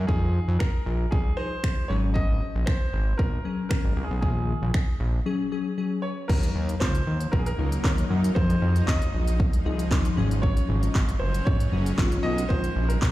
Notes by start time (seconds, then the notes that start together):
0.07 F2 F3 D#4 G#4, kick
0.48 F2
0.59 A#4, finger snap, kick
0.86 A#1
1.11 C2 G#4, kick
1.37 F3 D#4 G#4 C5
1.64 F3 D#4 G#4, finger snap, kick
1.88 G#1 F#3 C#4 G#4 C#5
2.14 D#5, kick
2.55 A#1
2.66 C5, finger snap, kick
2.93 G#1
3.18 A#1 A#4, kick
3.45 F#3 C#4 G#4
3.69 F#3 C#4 G#4 A#4, finger snap, kick
3.85 G#1
3.97 C2
4.04 G#4
4.10 B1
4.21 A#1 D#3 A#3 G#4, kick
4.62 A#1
4.74 finger snap, kick
5.00 A#1
5.26 F#3 C#4 G#4
5.52 F#3 C#4 G#4
5.77 F#3 C#4 G#4
6.02 C#5
6.28 D#2 F#3 A#3 D#4 A#4, kick, crash
6.43 closed hi-hat
6.55 D#2
6.69 closed hi-hat
6.80 C#2 C5, kick, snare, clap
6.95 closed hi-hat
7.07 D#2
7.21 closed hi-hat
7.32 A#1 A#4, kick
7.39 G#4
7.46 A#4, closed hi-hat
7.58 C#2 F#3 D#4 A#4
7.72 closed hi-hat
7.83 D#2 F#3 D#4 A#4 C#5, kick, snare, clap
7.98 closed hi-hat
8.10 F#2
8.24 closed hi-hat
8.35 F2 F3 G#3 D#4 G#4 C5, kick
8.50 closed hi-hat
8.62 F2
8.76 closed hi-hat
8.87 D#2 D#5, kick, snare, clap
9.02 closed hi-hat
9.14 A#1
9.27 closed hi-hat
9.40 C2, kick
9.53 closed hi-hat
9.65 C2 F3 D#4 G#4
9.79 closed hi-hat
9.91 D#2 F3 D#4 G#4 C6, kick, snare, clap
10.05 closed hi-hat
10.17 G#1 F#3 G#3 C#4 G#4
10.31 closed hi-hat
10.42 C#5, kick
10.57 closed hi-hat
10.69 G#1
10.83 closed hi-hat
10.95 G#1, kick, snare, clap
11.09 closed hi-hat
11.19 F#1 C5
11.34 closed hi-hat
11.45 G#1 C#5, kick
11.60 closed hi-hat
11.72 F#1 F#3 C#4 G#4
11.86 closed hi-hat
11.98 G#1 F#3 C#4 F4, kick, snare, clap
12.12 closed hi-hat
12.23 B1 D#5
12.38 closed hi-hat
12.49 A#1 G#3 A#3 D#4 A#4 C5, kick
12.64 closed hi-hat
12.76 A#1
12.88 A#4, closed hi-hat
13.02 A#1, kick, snare, clap